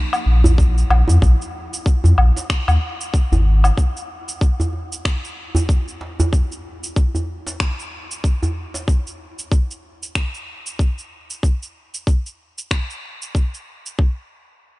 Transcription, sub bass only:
0.26 0.84 A#1 medium
0.90 1.03 A#1 medium
1.08 1.18 F2 medium
1.22 1.35 A#1 loud
2.04 2.14 F2 loud
2.18 2.31 A#1 medium
2.68 2.78 D#2 medium
3.32 3.71 G#1 loud

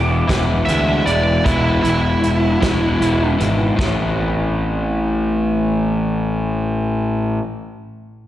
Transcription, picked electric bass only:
0.00 0.21 E1 medium
0.30 0.60 E1 medium
0.69 0.99 D2 medium
1.07 1.38 E1 medium
1.46 1.77 E1 medium
1.86 2.16 E1 medium
2.25 2.55 E1 medium
2.63 2.94 E1 medium
3.02 3.33 E1 medium
3.40 3.71 G#1 medium
3.79 7.38 A1 medium

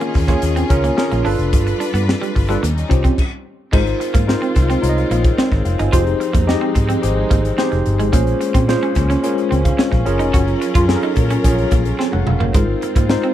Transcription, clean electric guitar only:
0.01 0.10 A#3 medium
0.15 muted clean electric guitar stroke soft
0.29 0.38 A#3 medium
0.56 0.65 C4 medium
0.71 muted clean electric guitar stroke soft
0.84 0.93 A#3 medium
0.98 muted clean electric guitar stroke soft
1.12 1.20 A#3 medium
1.25 1.34 D4 medium
1.67 muted clean electric guitar stroke soft
1.80 1.89 D4 medium
1.94 2.03 B3 medium
2.21 2.30 G3 medium
2.36 muted clean electric guitar stroke soft
2.49 2.58 G3 medium
2.63 2.72 A#3 medium
2.90 muted clean electric guitar stroke soft
3.04 3.13 C4 medium
3.73 3.82 G#3 medium
4.00 muted clean electric guitar stroke soft
4.14 4.23 A#3 medium
4.42 4.51 C4 medium
4.56 muted clean electric guitar stroke soft
4.70 4.79 C4 medium
5.11 5.20 A#3 medium
5.39 5.47 C4 medium
5.52 muted clean electric guitar stroke soft
5.79 5.88 D#4 medium
5.93 6.02 F4 medium
6.20 muted clean electric guitar stroke soft
6.33 6.43 A#3 medium
6.61 6.71 C4 medium
6.75 muted clean electric guitar stroke medium
6.89 6.98 C4 medium
7.31 7.40 A#3 medium
7.58 7.67 C4 medium
7.72 muted clean electric guitar stroke soft
7.99 8.09 G#3 medium
8.13 8.22 A#3 medium
8.41 muted clean electric guitar stroke soft
8.54 8.63 C4 medium
8.83 8.92 C#4 medium
8.96 muted clean electric guitar stroke soft
9.10 9.19 C#4 medium
9.51 9.60 C4 medium
9.78 9.88 C#4 medium
9.92 muted clean electric guitar stroke soft
10.19 10.29 D#4 medium
10.33 10.43 F#4 medium
10.62 muted clean electric guitar stroke soft
10.75 10.84 F4 medium
11.03 11.12 D#4 medium
11.17 muted clean electric guitar stroke medium
11.31 11.39 C#4 medium
11.72 11.81 A#3 medium
11.99 12.08 C4 medium
12.13 muted clean electric guitar stroke soft
12.40 12.49 A#3 medium
12.55 12.63 G#3 medium
12.83 muted clean electric guitar stroke soft
12.97 13.05 A#3 medium
13.23 13.32 C4 medium

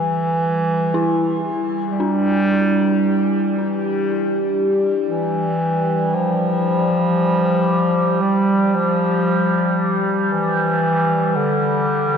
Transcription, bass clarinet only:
0.00 1.59 E3 loud
1.91 3.44 G3 loud
5.06 6.16 E3 medium
6.14 8.23 F3 loud
8.21 8.76 G3 medium
8.75 10.05 F3 medium
10.31 11.38 E3 loud
11.36 12.18 D3 medium

